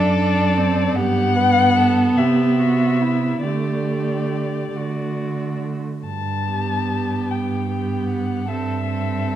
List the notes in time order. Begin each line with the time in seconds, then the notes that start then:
Already playing: F#2 D4 A4 D5
0.20 D4
0.58 C4
0.95 G2 B3 G4 F#5
1.36 B4
1.77 A4
2.17 C3 G4 E5
2.59 F#4
3.01 E4
3.43 D3 A3 G4 D5
4.74 D3 A3 F#4
6.05 G2 A5
6.47 B3 G4
7.30 G2 G5
7.70 B3 G4
8.09 F#5
8.47 G2 C4 A4 E5
8.86 C4 A4